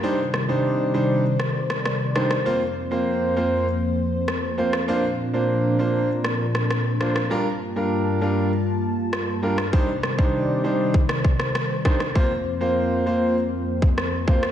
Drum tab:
SD |--r------r-rr-rr|------------r--r|---------r-rr-rr|------------r--r|
BD |----------------|----------------|----------------|----------------|

SD |--r------r-rr-rr|------------r--r|
BD |o--o----o-o---o-|o----------o--o-|